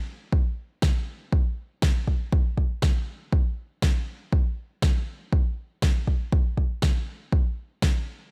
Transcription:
0.33 kick
0.82 kick, snare
1.33 kick
1.82 kick, snare
2.08 kick
2.33 kick
2.58 kick
2.82 kick, snare
3.33 kick
3.82 kick, snare
4.33 kick
4.82 kick, snare
5.33 kick
5.82 kick, snare
6.07 kick
6.32 kick
6.57 kick
6.82 kick, snare
7.32 kick
7.82 kick, snare

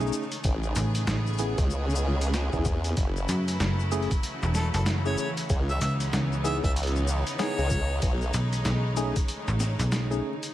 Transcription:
Already playing: B1 C#3 G#3 A3 D#4 C#5
0.00 A3 C#4 D#4 G#4, shaker
0.07 shaker
0.13 shaker
0.22 shaker
0.32 closed hi-hat, shaker
0.44 A1 C#3 B3 C#4 G#4, kick, closed hi-hat, shaker
0.63 shaker
0.75 A1 B4, closed hi-hat, shaker
0.95 closed hi-hat, shaker
1.07 A1, snare, closed hi-hat, shaker
1.26 shaker
1.29 shaker
1.33 shaker
1.35 shaker
1.36 closed hi-hat, shaker
1.39 B3 C#4 E4 G#4, shaker
1.58 C#2, kick, closed hi-hat, shaker
1.70 shaker
1.90 shaker
1.96 shaker
2.21 closed hi-hat, shaker
2.34 snare, closed hi-hat, shaker
2.53 E2 B3 C#4 E4 G#4, kick, shaker
2.65 kick, closed hi-hat, shaker
2.84 closed hi-hat, shaker
2.96 F#1 E3 F#3 A3 E4, kick, closed hi-hat, shaker
3.16 shaker
3.22 F#5
3.29 F#2, closed hi-hat, shaker
3.34 C#5
3.48 cross-stick, closed hi-hat, shaker
3.60 F#1, snare, closed hi-hat, shaker
3.80 shaker
3.92 A3 C#4 E4 G#4, closed hi-hat, shaker
4.03 closed hi-hat
4.11 kick, closed hi-hat, shaker
4.13 closed hi-hat
4.23 closed hi-hat, shaker
4.42 E1, shaker
4.55 A4, snare, shaker
4.74 F#1 A4, closed hi-hat, shaker
4.86 snare, closed hi-hat, shaker
5.06 A3 C#4 E4 G#4 C#5, shaker
5.18 C#5, shaker
5.37 closed hi-hat, shaker
5.50 C#2 E3 B3 D#4, kick, closed hi-hat, shaker
5.69 E5, shaker
5.81 C#2 E5 B5, closed hi-hat, shaker
6.00 cross-stick, closed hi-hat, shaker
6.02 cross-stick
6.04 cross-stick
6.06 cross-stick
6.08 cross-stick
6.10 D#5, cross-stick
6.12 C#2, cross-stick, snare, closed hi-hat, shaker
6.32 shaker
6.44 B3 D#4 E4 G#4 E5, closed hi-hat, shaker
6.64 C#2 E5, kick, closed hi-hat, shaker
6.76 closed hi-hat, shaker
6.83 closed hi-hat
6.87 closed hi-hat
6.96 shaker
7.08 shaker
7.27 closed hi-hat, shaker
7.39 B3 D#4 E4 G#4 C#5, snare, closed hi-hat, shaker
7.58 C#2, shaker
7.70 kick, shaker
8.02 B1 G#3 A3 D#4, kick, closed hi-hat, shaker
8.21 shaker
8.34 B1, closed hi-hat, shaker
8.53 cross-stick, closed hi-hat, shaker
8.65 B1, snare, closed hi-hat, shaker
8.97 A3 C#4 D#4 G#4, closed hi-hat, shaker
9.16 kick, closed hi-hat, shaker
9.28 closed hi-hat, shaker
9.48 A1, shaker
9.60 snare, shaker
9.79 B1, closed hi-hat, shaker
9.92 snare, closed hi-hat, shaker
10.11 A3 C#4 D#4 G#4, shaker
10.43 closed hi-hat, shaker

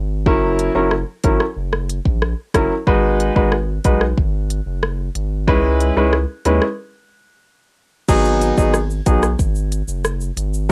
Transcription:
Already playing: G#1
0.26 F#1 F#3 C#4 E4 A#4, kick
0.59 closed hi-hat
0.75 F#1 F#3 C#4 E4 A#4
0.91 cross-stick
1.24 G#1 F#3 C#4 E4 A#4, kick, closed hi-hat
1.40 cross-stick
1.57 F#1
1.73 cross-stick
1.90 closed hi-hat
2.05 A#1, kick
2.22 cross-stick
2.54 F#1 F#3 C#4 E4 A#4, kick, cross-stick, closed hi-hat
2.87 G#1 G#3 D#4 F#4 B4, kick
3.20 closed hi-hat
3.36 G#1 G#3 D#4 F#4 B4, kick
3.52 cross-stick
3.84 B1 G#3 D#4 F#4 B4, kick, closed hi-hat
4.01 cross-stick
4.17 G#1, kick
4.50 closed hi-hat
4.66 F#1
4.83 cross-stick
5.15 G#1, closed hi-hat
5.48 C#2 G#3 C#4 E4 B4, kick
5.80 closed hi-hat
5.97 C#2 G#3 C#4 E4 B4
6.13 cross-stick
6.45 D#2 G#3 C#4 E4 B4, closed hi-hat
6.62 cross-stick
8.08 G#1 F#3 B3 D#4 G#4, kick, crash, shaker
8.25 shaker
8.41 closed hi-hat, shaker
8.57 G#1 F#3 B3 D#4 G#4, kick, shaker
8.74 cross-stick, shaker
8.90 shaker
9.06 B1 F#3 B3 D#4 G#4, kick, closed hi-hat, shaker
9.23 cross-stick, shaker
9.39 G#1, kick, shaker
9.55 shaker
9.72 closed hi-hat, shaker
9.88 F#1, shaker
10.05 cross-stick, shaker
10.21 shaker
10.37 G#1, closed hi-hat, shaker
10.54 shaker

